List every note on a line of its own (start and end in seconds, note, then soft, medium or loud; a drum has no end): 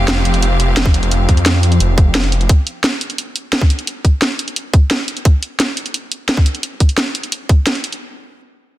0.00 0.24 F1 loud
0.00 2.45 F3 medium
0.00 2.45 C4 medium
0.00 2.45 G4 medium
0.00 2.45 F5 loud
0.08 snare loud
0.08 closed hi-hat medium
0.25 0.76 F1 loud
0.25 closed hi-hat medium
0.34 closed hi-hat soft
0.42 closed hi-hat medium
0.60 closed hi-hat medium
0.77 0.93 F1 loud
0.77 snare loud
0.77 closed hi-hat medium
0.86 kick loud
0.94 1.10 F1 loud
0.94 closed hi-hat medium
1.03 closed hi-hat soft
1.11 1.27 F1 loud
1.11 closed hi-hat medium
1.29 1.79 F2 loud
1.29 kick medium
1.29 closed hi-hat medium
1.37 closed hi-hat soft
1.46 snare loud
1.46 closed hi-hat medium
1.63 closed hi-hat medium
1.72 closed hi-hat soft
1.80 2.48 F1 medium
1.80 closed hi-hat medium
1.98 kick loud
1.98 closed hi-hat medium
2.15 snare loud
2.15 closed hi-hat medium
2.23 closed hi-hat soft
2.32 closed hi-hat medium
2.41 closed hi-hat soft
2.49 kick loud
2.49 closed hi-hat medium
2.67 closed hi-hat medium
2.84 snare loud
2.84 closed hi-hat medium
3.01 closed hi-hat medium
3.10 closed hi-hat soft
3.18 closed hi-hat medium
3.36 closed hi-hat medium
3.53 snare loud
3.53 closed hi-hat medium
3.61 kick loud
3.70 closed hi-hat medium
3.79 closed hi-hat soft
3.87 closed hi-hat medium
4.05 kick medium
4.05 closed hi-hat medium
4.22 snare loud
4.22 closed hi-hat medium
4.39 closed hi-hat medium
4.48 closed hi-hat soft
4.56 closed hi-hat medium
4.74 kick loud
4.74 closed hi-hat medium
4.91 snare loud
4.91 closed hi-hat medium
5.08 closed hi-hat medium
5.17 closed hi-hat soft
5.25 kick loud
5.25 closed hi-hat medium
5.43 closed hi-hat medium
5.60 snare loud
5.60 closed hi-hat medium
5.77 closed hi-hat medium
5.86 closed hi-hat soft
5.94 closed hi-hat medium
6.12 closed hi-hat medium
6.29 snare loud
6.29 closed hi-hat medium
6.37 kick loud
6.46 closed hi-hat medium
6.55 closed hi-hat soft
6.63 closed hi-hat medium
6.80 kick medium
6.80 closed hi-hat medium
6.89 closed hi-hat soft
6.98 snare loud
6.98 closed hi-hat loud
7.15 closed hi-hat medium
7.23 closed hi-hat soft
7.32 closed hi-hat medium
7.49 kick loud
7.49 closed hi-hat medium
7.67 snare loud
7.67 closed hi-hat medium
7.75 closed hi-hat soft
7.84 closed hi-hat medium
7.92 closed hi-hat soft